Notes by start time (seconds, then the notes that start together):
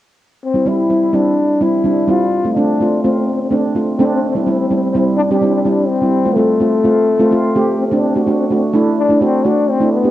0.44 C4
0.54 G3 C4 E4
0.66 G3 C4 E4
0.90 G3 C4 E4
1.13 G3 C4 D4 E4
1.61 G3 C4 E4
1.84 G3 C4 D4
2.08 G3 C4 E4 F4
2.44 A3 C4 F4
2.56 A3 C4 D4
2.80 A3 C4 F4
3.04 A3 C4 F4
3.12 C4
3.19 C4
3.26 C4
3.34 C4
3.41 C4
3.49 A3 C4 D4
3.56 C4
3.75 A3 C4 F4
3.98 A3 C4 D4
4.07 C4
4.15 C4
4.22 C4
4.29 C4
4.35 G3 C4 E4
4.43 G3 C4
4.47 C4 E4
4.52 C4
4.60 C4
4.68 G3 C4 E4
4.74 C4
4.83 C4
4.90 C4
4.95 G3 C4 E4
5.17 D4
5.24 D4
5.30 G3 C4 D4 G4
5.39 G3 C4 D4
5.43 E4
5.47 D4
5.55 D4
5.62 G3 D4
5.66 C4 D4 E4
5.87 C4
6.02 G3 C4 E4
6.25 A3 C4 F4
6.35 A3 C4 F4
6.60 A3 C4 F4
6.84 A3 C4 F4
7.19 A3 C4 F4
7.31 A3 C4 F4
7.55 A3 C4 G4
7.79 C4
7.86 C4
7.91 A3 C4 D4
8.01 C4
8.08 C4
8.15 A3 C4 D4 F#4
8.24 A3 C4 D4
8.28 C4 F#4
8.39 C4
8.47 A3 C4 D4
8.52 C4 F#4
8.73 A3 D4 E4
8.99 D4
9.09 A3 D4 E4
9.21 A3 C4 D4 F#4
9.45 A3 D4 F#4
9.70 C4
9.80 A3 D4 E4
9.93 B3
10.04 B3 D4 G4